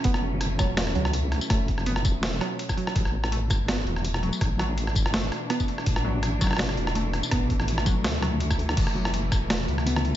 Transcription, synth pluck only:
X:1
M:4/4
L:1/8
Q:"Swing 16ths" 1/4=165
K:Amix
V:1 name="Synth pluck" clef=bass
B, z2 F,2 F,3 | A,2 B, z2 F,2 F, | z2 A,2 B, z2 F,- | F, F,3 A,2 B, z |
z F,2 F,3 A,2 | B, z2 F,2 F,3 | z F,3 A,2 B, z |]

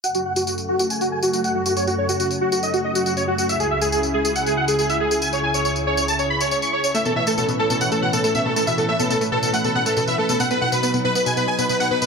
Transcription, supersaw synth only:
X:1
M:4/4
L:1/16
Q:1/4=139
K:F#dor
V:1 name="Supersaw synth"
f F f F F z F F g F g F F f F F | c F c F F z F F d F d F F c F F | e G e G G z G G f G f G G e G G | g c g c c z c c a c b c c c' c c |
e A e A A z A A f A f A A e A A | e A e A A z A A f A f A A e A A | f B f B B z B B g B g B B f B B |]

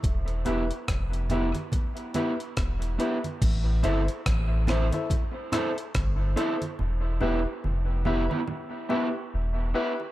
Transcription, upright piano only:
X:1
M:4/4
L:1/16
Q:"Swing 16ths" 1/4=71
K:Am
V:1 name="Upright piano"
z2 [EGBe] z3 [EGBe] z3 [EGBe] z3 [EGBe] z | z2 [EAce] z3 [EAce] [EAce] z2 [EAce] z3 [EAce] z | z2 [EGBe] z3 [EGBe] z3 [EGBe] z3 [EGBe] z |]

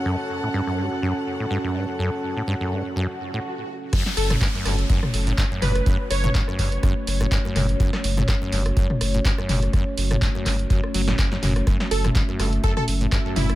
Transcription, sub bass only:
X:1
M:4/4
L:1/8
Q:"Swing 16ths" 1/4=124
K:F#phr
V:1 name="Sub bass" clef=bass
z8 | z8 | z F,,, z F,,, z F,,, z F,,, | z F,,, z F,,, z F,,, z F,,, |
z F,,, z F,,, z F,,, z F,,, | z F,,, z F,,, z F,,, z F,,, | z F,,, z F,,, z F,,, z F,,, |]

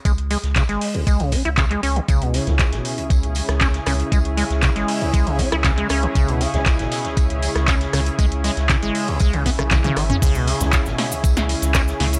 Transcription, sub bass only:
X:1
M:4/4
L:1/16
Q:1/4=118
K:C#m
V:1 name="Sub bass" clef=bass
C,,2 z C,, z G,,, z2 C,,2 z C,,2 z C,, z | C,,2 z C,, z G,,, z2 C,,2 z C,,2 z C,, z | C,,2 z C,, z G,,, z2 C,,2 z C,,2 z C,, z | C,,2 z C,, z G,,, z2 C,,2 z C,,2 z C,, z |
C,,2 z C,, z G,,, z2 C,,2 z B,,,2 z G,,, z | C,,2 z C,, z G,,, z2 C,,2 z C,,2 z C,, z |]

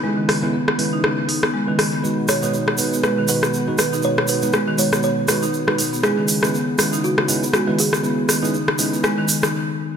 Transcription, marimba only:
X:1
M:4/4
L:1/16
Q:"Swing 16ths" 1/4=120
K:C#dor
V:1 name="Marimba"
G, D, z B, B, z D, D z2 D B, G, D, z B, | B, z D, D z2 D B, G, D, z B, B, z D, D | z2 D B, G, D, z B, B, z D, D z2 D B, | G, D, z B, B, z D, D z2 D B, G, D, z B, |
B, z D, D z2 D B, G, D, z D z4 |]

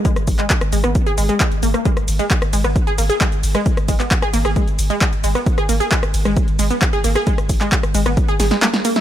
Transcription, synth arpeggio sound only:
X:1
M:4/4
L:1/16
Q:1/4=133
K:G#m
V:1 name="Synth arpeggio sound"
G, z2 G, z2 G, B, z G G, G, G, z A, A, | G, z2 G, z2 G, B, z G A, G G, z2 G, | z2 G, B, z G A, G G, z2 G, z2 G, B, | z G A, G G, z2 G, z2 G, B, z G A, G |
G, z2 G, z2 G, B, z G G G, A, z A, E |]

